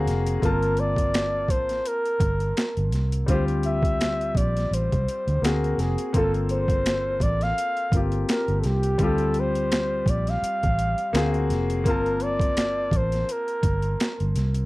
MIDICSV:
0, 0, Header, 1, 6, 480
1, 0, Start_track
1, 0, Key_signature, -2, "minor"
1, 0, Tempo, 714286
1, 281, Time_signature, 4, 2, 24, 8
1, 9850, End_track
2, 0, Start_track
2, 0, Title_t, "Flugelhorn"
2, 0, Program_c, 0, 56
2, 299, Note_on_c, 0, 70, 94
2, 536, Note_on_c, 0, 74, 108
2, 546, Note_off_c, 0, 70, 0
2, 1015, Note_on_c, 0, 72, 90
2, 1025, Note_off_c, 0, 74, 0
2, 1261, Note_on_c, 0, 70, 86
2, 1271, Note_off_c, 0, 72, 0
2, 1971, Note_off_c, 0, 70, 0
2, 2217, Note_on_c, 0, 72, 86
2, 2322, Note_off_c, 0, 72, 0
2, 2461, Note_on_c, 0, 76, 96
2, 2937, Note_on_c, 0, 74, 82
2, 2947, Note_off_c, 0, 76, 0
2, 3187, Note_on_c, 0, 72, 74
2, 3197, Note_off_c, 0, 74, 0
2, 3665, Note_on_c, 0, 70, 82
2, 3675, Note_off_c, 0, 72, 0
2, 3899, Note_on_c, 0, 68, 72
2, 3909, Note_off_c, 0, 70, 0
2, 4130, Note_off_c, 0, 68, 0
2, 4148, Note_on_c, 0, 69, 93
2, 4250, Note_off_c, 0, 69, 0
2, 4378, Note_on_c, 0, 72, 99
2, 4858, Note_on_c, 0, 74, 84
2, 4868, Note_off_c, 0, 72, 0
2, 4995, Note_on_c, 0, 77, 96
2, 5005, Note_off_c, 0, 74, 0
2, 5396, Note_off_c, 0, 77, 0
2, 5579, Note_on_c, 0, 70, 79
2, 5782, Note_on_c, 0, 69, 54
2, 5792, Note_off_c, 0, 70, 0
2, 5827, Note_on_c, 0, 67, 83
2, 5837, Note_off_c, 0, 69, 0
2, 6070, Note_on_c, 0, 69, 98
2, 6080, Note_off_c, 0, 67, 0
2, 6317, Note_on_c, 0, 72, 103
2, 6327, Note_off_c, 0, 69, 0
2, 6787, Note_on_c, 0, 74, 87
2, 6797, Note_off_c, 0, 72, 0
2, 6920, Note_on_c, 0, 77, 84
2, 6930, Note_off_c, 0, 74, 0
2, 7733, Note_off_c, 0, 77, 0
2, 7982, Note_on_c, 0, 70, 102
2, 8222, Note_on_c, 0, 74, 111
2, 8232, Note_off_c, 0, 70, 0
2, 8716, Note_on_c, 0, 72, 90
2, 8726, Note_off_c, 0, 74, 0
2, 8953, Note_on_c, 0, 70, 80
2, 8963, Note_off_c, 0, 72, 0
2, 9657, Note_off_c, 0, 70, 0
2, 9850, End_track
3, 0, Start_track
3, 0, Title_t, "Grand piano"
3, 0, Program_c, 1, 0
3, 0, Control_c, 1, 64, 127
3, 0, Note_on_c, 1, 58, 73
3, 0, Note_on_c, 1, 60, 66
3, 0, Note_on_c, 1, 66, 67
3, 0, Note_on_c, 1, 68, 85
3, 0, Note_on_c, 1, 77, 57
3, 259, Note_off_c, 1, 77, 0
3, 269, Note_on_c, 1, 57, 55
3, 271, Note_off_c, 1, 60, 0
3, 281, Note_on_c, 1, 60, 57
3, 282, Note_off_c, 1, 58, 0
3, 288, Note_off_c, 1, 66, 0
3, 290, Control_c, 1, 64, 0
3, 291, Note_off_c, 1, 68, 0
3, 295, Note_on_c, 1, 65, 61
3, 306, Note_on_c, 1, 81, 71
3, 313, Note_on_c, 1, 58, 64
3, 323, Note_off_c, 1, 57, 0
3, 413, Control_c, 1, 64, 127
3, 2174, Note_off_c, 1, 60, 0
3, 2181, Note_off_c, 1, 65, 0
3, 2186, Note_off_c, 1, 81, 0
3, 2190, Note_off_c, 1, 58, 0
3, 2193, Note_on_c, 1, 55, 61
3, 2203, Note_on_c, 1, 60, 53
3, 2209, Control_c, 1, 64, 0
3, 2214, Note_on_c, 1, 65, 61
3, 2227, Note_on_c, 1, 67, 71
3, 2316, Control_c, 1, 64, 127
3, 3610, Note_off_c, 1, 55, 0
3, 3615, Note_off_c, 1, 60, 0
3, 3621, Note_off_c, 1, 65, 0
3, 3627, Note_off_c, 1, 67, 0
3, 3643, Note_on_c, 1, 58, 58
3, 3650, Control_c, 1, 64, 0
3, 3655, Note_on_c, 1, 60, 53
3, 3657, Note_on_c, 1, 66, 57
3, 3664, Note_on_c, 1, 68, 64
3, 3786, Control_c, 1, 64, 127
3, 4108, Note_off_c, 1, 58, 0
3, 4117, Note_off_c, 1, 60, 0
3, 4118, Note_on_c, 1, 58, 65
3, 4127, Note_on_c, 1, 60, 60
3, 4129, Note_off_c, 1, 66, 0
3, 4129, Control_c, 1, 64, 0
3, 4132, Note_off_c, 1, 68, 0
3, 4143, Note_on_c, 1, 65, 58
3, 4152, Note_on_c, 1, 69, 65
3, 4233, Control_c, 1, 64, 127
3, 5295, Note_off_c, 1, 58, 0
3, 5300, Note_off_c, 1, 60, 0
3, 5308, Note_off_c, 1, 65, 0
3, 5313, Note_off_c, 1, 69, 0
3, 5330, Note_on_c, 1, 58, 46
3, 5339, Note_on_c, 1, 60, 42
3, 5344, Note_on_c, 1, 65, 43
3, 5353, Note_on_c, 1, 67, 54
3, 6035, Note_on_c, 1, 55, 61
3, 6038, Note_off_c, 1, 60, 0
3, 6045, Note_off_c, 1, 58, 0
3, 6048, Note_on_c, 1, 60, 55
3, 6050, Control_c, 1, 64, 0
3, 6053, Note_off_c, 1, 65, 0
3, 6057, Note_off_c, 1, 67, 0
3, 6064, Note_on_c, 1, 65, 61
3, 6074, Note_on_c, 1, 67, 70
3, 6164, Control_c, 1, 64, 127
3, 7451, Note_off_c, 1, 55, 0
3, 7458, Note_off_c, 1, 60, 0
3, 7465, Note_off_c, 1, 65, 0
3, 7470, Note_off_c, 1, 67, 0
3, 7479, Note_on_c, 1, 58, 81
3, 7489, Control_c, 1, 64, 0
3, 7490, Note_on_c, 1, 60, 66
3, 7494, Note_on_c, 1, 65, 54
3, 7503, Note_on_c, 1, 68, 80
3, 7536, Note_off_c, 1, 65, 0
3, 7536, Note_on_c, 1, 66, 64
3, 7588, Control_c, 1, 64, 127
3, 7946, Note_off_c, 1, 58, 0
3, 7956, Note_on_c, 1, 58, 71
3, 7963, Note_off_c, 1, 60, 0
3, 7969, Control_c, 1, 64, 0
3, 7972, Note_off_c, 1, 68, 0
3, 7973, Note_on_c, 1, 60, 59
3, 7984, Note_on_c, 1, 65, 59
3, 7988, Note_off_c, 1, 66, 0
3, 7996, Note_on_c, 1, 81, 69
3, 8097, Control_c, 1, 64, 127
3, 9850, Note_off_c, 1, 58, 0
3, 9850, Note_off_c, 1, 60, 0
3, 9850, Note_off_c, 1, 65, 0
3, 9850, Note_off_c, 1, 81, 0
3, 9850, End_track
4, 0, Start_track
4, 0, Title_t, "Fingered electric bass"
4, 0, Program_c, 2, 33
4, 43, Note_on_c, 2, 29, 80
4, 251, Note_off_c, 2, 29, 0
4, 287, Note_on_c, 2, 31, 99
4, 1001, Note_off_c, 2, 31, 0
4, 1001, Note_on_c, 2, 33, 89
4, 1210, Note_off_c, 2, 33, 0
4, 1481, Note_on_c, 2, 31, 75
4, 1689, Note_off_c, 2, 31, 0
4, 1863, Note_on_c, 2, 31, 80
4, 1968, Note_off_c, 2, 31, 0
4, 1968, Note_on_c, 2, 36, 84
4, 2174, Note_off_c, 2, 36, 0
4, 2205, Note_on_c, 2, 38, 95
4, 2896, Note_off_c, 2, 38, 0
4, 2925, Note_on_c, 2, 34, 81
4, 3132, Note_off_c, 2, 34, 0
4, 3166, Note_on_c, 2, 33, 73
4, 3280, Note_off_c, 2, 33, 0
4, 3312, Note_on_c, 2, 36, 74
4, 3397, Note_off_c, 2, 36, 0
4, 3544, Note_on_c, 2, 38, 84
4, 3632, Note_off_c, 2, 38, 0
4, 3641, Note_on_c, 2, 38, 86
4, 3850, Note_off_c, 2, 38, 0
4, 3884, Note_on_c, 2, 29, 73
4, 3999, Note_off_c, 2, 29, 0
4, 4131, Note_on_c, 2, 31, 89
4, 4819, Note_off_c, 2, 31, 0
4, 4841, Note_on_c, 2, 33, 88
4, 5050, Note_off_c, 2, 33, 0
4, 5324, Note_on_c, 2, 31, 83
4, 5531, Note_off_c, 2, 31, 0
4, 5700, Note_on_c, 2, 31, 81
4, 5790, Note_off_c, 2, 31, 0
4, 5808, Note_on_c, 2, 36, 81
4, 6013, Note_off_c, 2, 36, 0
4, 6045, Note_on_c, 2, 38, 78
4, 6736, Note_off_c, 2, 38, 0
4, 6763, Note_on_c, 2, 34, 74
4, 6971, Note_off_c, 2, 34, 0
4, 7148, Note_on_c, 2, 33, 83
4, 7351, Note_off_c, 2, 33, 0
4, 7484, Note_on_c, 2, 38, 97
4, 7725, Note_on_c, 2, 29, 77
4, 7735, Note_off_c, 2, 38, 0
4, 7970, Note_off_c, 2, 29, 0
4, 7970, Note_on_c, 2, 31, 97
4, 8658, Note_off_c, 2, 31, 0
4, 8679, Note_on_c, 2, 33, 89
4, 8888, Note_off_c, 2, 33, 0
4, 9162, Note_on_c, 2, 31, 83
4, 9370, Note_off_c, 2, 31, 0
4, 9546, Note_on_c, 2, 31, 73
4, 9633, Note_off_c, 2, 31, 0
4, 9649, Note_on_c, 2, 36, 73
4, 9850, Note_off_c, 2, 36, 0
4, 9850, End_track
5, 0, Start_track
5, 0, Title_t, "Muted fingered electric bass strokes"
5, 7005, Note_on_c, 9, 29, 43
5, 7072, Note_off_c, 9, 29, 0
5, 9850, End_track
6, 0, Start_track
6, 0, Title_t, "Drums"
6, 50, Note_on_c, 9, 42, 65
6, 63, Note_on_c, 9, 38, 30
6, 117, Note_off_c, 9, 42, 0
6, 130, Note_off_c, 9, 38, 0
6, 178, Note_on_c, 9, 42, 50
6, 245, Note_off_c, 9, 42, 0
6, 284, Note_on_c, 9, 36, 81
6, 290, Note_on_c, 9, 42, 52
6, 352, Note_off_c, 9, 36, 0
6, 357, Note_off_c, 9, 42, 0
6, 420, Note_on_c, 9, 42, 31
6, 487, Note_off_c, 9, 42, 0
6, 517, Note_on_c, 9, 42, 53
6, 584, Note_off_c, 9, 42, 0
6, 648, Note_on_c, 9, 36, 76
6, 660, Note_on_c, 9, 42, 38
6, 715, Note_off_c, 9, 36, 0
6, 727, Note_off_c, 9, 42, 0
6, 767, Note_on_c, 9, 42, 68
6, 769, Note_on_c, 9, 26, 86
6, 773, Note_on_c, 9, 38, 103
6, 834, Note_off_c, 9, 42, 0
6, 836, Note_off_c, 9, 26, 0
6, 840, Note_off_c, 9, 38, 0
6, 998, Note_on_c, 9, 36, 81
6, 1009, Note_on_c, 9, 42, 57
6, 1065, Note_off_c, 9, 36, 0
6, 1076, Note_off_c, 9, 42, 0
6, 1137, Note_on_c, 9, 42, 45
6, 1150, Note_on_c, 9, 38, 32
6, 1204, Note_off_c, 9, 42, 0
6, 1218, Note_off_c, 9, 38, 0
6, 1247, Note_on_c, 9, 42, 79
6, 1314, Note_off_c, 9, 42, 0
6, 1381, Note_on_c, 9, 42, 32
6, 1448, Note_off_c, 9, 42, 0
6, 1478, Note_on_c, 9, 36, 87
6, 1482, Note_on_c, 9, 42, 65
6, 1545, Note_off_c, 9, 36, 0
6, 1549, Note_off_c, 9, 42, 0
6, 1614, Note_on_c, 9, 42, 35
6, 1681, Note_off_c, 9, 42, 0
6, 1727, Note_on_c, 9, 42, 68
6, 1729, Note_on_c, 9, 26, 74
6, 1733, Note_on_c, 9, 38, 101
6, 1794, Note_off_c, 9, 42, 0
6, 1796, Note_off_c, 9, 26, 0
6, 1800, Note_off_c, 9, 38, 0
6, 1860, Note_on_c, 9, 42, 32
6, 1927, Note_off_c, 9, 42, 0
6, 1965, Note_on_c, 9, 42, 61
6, 1978, Note_on_c, 9, 38, 30
6, 2032, Note_off_c, 9, 42, 0
6, 2045, Note_off_c, 9, 38, 0
6, 2098, Note_on_c, 9, 42, 47
6, 2166, Note_off_c, 9, 42, 0
6, 2203, Note_on_c, 9, 36, 82
6, 2205, Note_on_c, 9, 42, 65
6, 2271, Note_off_c, 9, 36, 0
6, 2272, Note_off_c, 9, 42, 0
6, 2340, Note_on_c, 9, 42, 33
6, 2407, Note_off_c, 9, 42, 0
6, 2441, Note_on_c, 9, 42, 56
6, 2508, Note_off_c, 9, 42, 0
6, 2570, Note_on_c, 9, 36, 85
6, 2586, Note_on_c, 9, 42, 37
6, 2638, Note_off_c, 9, 36, 0
6, 2653, Note_off_c, 9, 42, 0
6, 2692, Note_on_c, 9, 42, 76
6, 2695, Note_on_c, 9, 26, 82
6, 2699, Note_on_c, 9, 38, 103
6, 2760, Note_off_c, 9, 42, 0
6, 2762, Note_off_c, 9, 26, 0
6, 2766, Note_off_c, 9, 38, 0
6, 2830, Note_on_c, 9, 42, 33
6, 2897, Note_off_c, 9, 42, 0
6, 2921, Note_on_c, 9, 36, 79
6, 2937, Note_on_c, 9, 42, 58
6, 2989, Note_off_c, 9, 36, 0
6, 3005, Note_off_c, 9, 42, 0
6, 3068, Note_on_c, 9, 42, 42
6, 3082, Note_on_c, 9, 38, 32
6, 3135, Note_off_c, 9, 42, 0
6, 3149, Note_off_c, 9, 38, 0
6, 3181, Note_on_c, 9, 42, 73
6, 3249, Note_off_c, 9, 42, 0
6, 3309, Note_on_c, 9, 36, 79
6, 3309, Note_on_c, 9, 42, 31
6, 3376, Note_off_c, 9, 36, 0
6, 3376, Note_off_c, 9, 42, 0
6, 3417, Note_on_c, 9, 42, 57
6, 3484, Note_off_c, 9, 42, 0
6, 3546, Note_on_c, 9, 42, 36
6, 3613, Note_off_c, 9, 42, 0
6, 3658, Note_on_c, 9, 42, 79
6, 3660, Note_on_c, 9, 26, 75
6, 3664, Note_on_c, 9, 38, 92
6, 3725, Note_off_c, 9, 42, 0
6, 3728, Note_off_c, 9, 26, 0
6, 3731, Note_off_c, 9, 38, 0
6, 3791, Note_on_c, 9, 42, 29
6, 3859, Note_off_c, 9, 42, 0
6, 3891, Note_on_c, 9, 42, 55
6, 3904, Note_on_c, 9, 38, 31
6, 3958, Note_off_c, 9, 42, 0
6, 3971, Note_off_c, 9, 38, 0
6, 4020, Note_on_c, 9, 42, 50
6, 4087, Note_off_c, 9, 42, 0
6, 4127, Note_on_c, 9, 36, 96
6, 4127, Note_on_c, 9, 42, 61
6, 4194, Note_off_c, 9, 36, 0
6, 4194, Note_off_c, 9, 42, 0
6, 4262, Note_on_c, 9, 42, 32
6, 4330, Note_off_c, 9, 42, 0
6, 4362, Note_on_c, 9, 42, 59
6, 4430, Note_off_c, 9, 42, 0
6, 4490, Note_on_c, 9, 36, 85
6, 4499, Note_on_c, 9, 42, 39
6, 4557, Note_off_c, 9, 36, 0
6, 4566, Note_off_c, 9, 42, 0
6, 4608, Note_on_c, 9, 42, 81
6, 4610, Note_on_c, 9, 26, 84
6, 4614, Note_on_c, 9, 38, 93
6, 4675, Note_off_c, 9, 42, 0
6, 4678, Note_off_c, 9, 26, 0
6, 4682, Note_off_c, 9, 38, 0
6, 4839, Note_on_c, 9, 36, 83
6, 4847, Note_on_c, 9, 42, 60
6, 4906, Note_off_c, 9, 36, 0
6, 4914, Note_off_c, 9, 42, 0
6, 4980, Note_on_c, 9, 42, 43
6, 4993, Note_on_c, 9, 38, 31
6, 5047, Note_off_c, 9, 42, 0
6, 5060, Note_off_c, 9, 38, 0
6, 5094, Note_on_c, 9, 42, 73
6, 5161, Note_off_c, 9, 42, 0
6, 5220, Note_on_c, 9, 42, 30
6, 5287, Note_off_c, 9, 42, 0
6, 5321, Note_on_c, 9, 36, 96
6, 5328, Note_on_c, 9, 42, 64
6, 5388, Note_off_c, 9, 36, 0
6, 5395, Note_off_c, 9, 42, 0
6, 5455, Note_on_c, 9, 42, 36
6, 5522, Note_off_c, 9, 42, 0
6, 5569, Note_on_c, 9, 42, 79
6, 5571, Note_on_c, 9, 26, 71
6, 5575, Note_on_c, 9, 38, 99
6, 5636, Note_off_c, 9, 42, 0
6, 5638, Note_off_c, 9, 26, 0
6, 5642, Note_off_c, 9, 38, 0
6, 5700, Note_on_c, 9, 42, 26
6, 5767, Note_off_c, 9, 42, 0
6, 5803, Note_on_c, 9, 42, 58
6, 5815, Note_on_c, 9, 38, 34
6, 5870, Note_off_c, 9, 42, 0
6, 5883, Note_off_c, 9, 38, 0
6, 5934, Note_on_c, 9, 42, 47
6, 6002, Note_off_c, 9, 42, 0
6, 6039, Note_on_c, 9, 42, 58
6, 6042, Note_on_c, 9, 36, 94
6, 6106, Note_off_c, 9, 42, 0
6, 6109, Note_off_c, 9, 36, 0
6, 6170, Note_on_c, 9, 42, 32
6, 6237, Note_off_c, 9, 42, 0
6, 6277, Note_on_c, 9, 42, 57
6, 6344, Note_off_c, 9, 42, 0
6, 6420, Note_on_c, 9, 42, 41
6, 6487, Note_off_c, 9, 42, 0
6, 6529, Note_on_c, 9, 42, 78
6, 6531, Note_on_c, 9, 26, 79
6, 6535, Note_on_c, 9, 38, 101
6, 6596, Note_off_c, 9, 42, 0
6, 6598, Note_off_c, 9, 26, 0
6, 6603, Note_off_c, 9, 38, 0
6, 6759, Note_on_c, 9, 36, 88
6, 6771, Note_on_c, 9, 42, 64
6, 6827, Note_off_c, 9, 36, 0
6, 6838, Note_off_c, 9, 42, 0
6, 6902, Note_on_c, 9, 42, 44
6, 6915, Note_on_c, 9, 38, 29
6, 6969, Note_off_c, 9, 42, 0
6, 6983, Note_off_c, 9, 38, 0
6, 7014, Note_on_c, 9, 42, 77
6, 7081, Note_off_c, 9, 42, 0
6, 7144, Note_on_c, 9, 42, 33
6, 7146, Note_on_c, 9, 36, 76
6, 7211, Note_off_c, 9, 42, 0
6, 7213, Note_off_c, 9, 36, 0
6, 7249, Note_on_c, 9, 42, 61
6, 7316, Note_off_c, 9, 42, 0
6, 7378, Note_on_c, 9, 42, 36
6, 7445, Note_off_c, 9, 42, 0
6, 7489, Note_on_c, 9, 42, 68
6, 7492, Note_on_c, 9, 26, 82
6, 7496, Note_on_c, 9, 38, 100
6, 7557, Note_off_c, 9, 42, 0
6, 7559, Note_off_c, 9, 26, 0
6, 7563, Note_off_c, 9, 38, 0
6, 7621, Note_on_c, 9, 42, 28
6, 7688, Note_off_c, 9, 42, 0
6, 7729, Note_on_c, 9, 42, 59
6, 7742, Note_on_c, 9, 38, 29
6, 7796, Note_off_c, 9, 42, 0
6, 7809, Note_off_c, 9, 38, 0
6, 7861, Note_on_c, 9, 42, 50
6, 7928, Note_off_c, 9, 42, 0
6, 7966, Note_on_c, 9, 36, 97
6, 7968, Note_on_c, 9, 42, 59
6, 8033, Note_off_c, 9, 36, 0
6, 8036, Note_off_c, 9, 42, 0
6, 8105, Note_on_c, 9, 42, 30
6, 8172, Note_off_c, 9, 42, 0
6, 8198, Note_on_c, 9, 42, 62
6, 8265, Note_off_c, 9, 42, 0
6, 8330, Note_on_c, 9, 36, 90
6, 8341, Note_on_c, 9, 42, 39
6, 8397, Note_off_c, 9, 36, 0
6, 8409, Note_off_c, 9, 42, 0
6, 8446, Note_on_c, 9, 42, 83
6, 8448, Note_on_c, 9, 26, 85
6, 8452, Note_on_c, 9, 38, 91
6, 8513, Note_off_c, 9, 42, 0
6, 8515, Note_off_c, 9, 26, 0
6, 8519, Note_off_c, 9, 38, 0
6, 8678, Note_on_c, 9, 36, 82
6, 8688, Note_on_c, 9, 42, 60
6, 8746, Note_off_c, 9, 36, 0
6, 8755, Note_off_c, 9, 42, 0
6, 8818, Note_on_c, 9, 42, 46
6, 8831, Note_on_c, 9, 38, 31
6, 8885, Note_off_c, 9, 42, 0
6, 8898, Note_off_c, 9, 38, 0
6, 8930, Note_on_c, 9, 42, 74
6, 8997, Note_off_c, 9, 42, 0
6, 9058, Note_on_c, 9, 42, 32
6, 9125, Note_off_c, 9, 42, 0
6, 9159, Note_on_c, 9, 36, 87
6, 9161, Note_on_c, 9, 42, 65
6, 9226, Note_off_c, 9, 36, 0
6, 9228, Note_off_c, 9, 42, 0
6, 9289, Note_on_c, 9, 42, 35
6, 9357, Note_off_c, 9, 42, 0
6, 9408, Note_on_c, 9, 42, 72
6, 9411, Note_on_c, 9, 26, 70
6, 9415, Note_on_c, 9, 38, 99
6, 9476, Note_off_c, 9, 42, 0
6, 9478, Note_off_c, 9, 26, 0
6, 9482, Note_off_c, 9, 38, 0
6, 9543, Note_on_c, 9, 42, 31
6, 9610, Note_off_c, 9, 42, 0
6, 9647, Note_on_c, 9, 42, 64
6, 9660, Note_on_c, 9, 38, 28
6, 9714, Note_off_c, 9, 42, 0
6, 9727, Note_off_c, 9, 38, 0
6, 9774, Note_on_c, 9, 42, 49
6, 9841, Note_off_c, 9, 42, 0
6, 9850, End_track
0, 0, End_of_file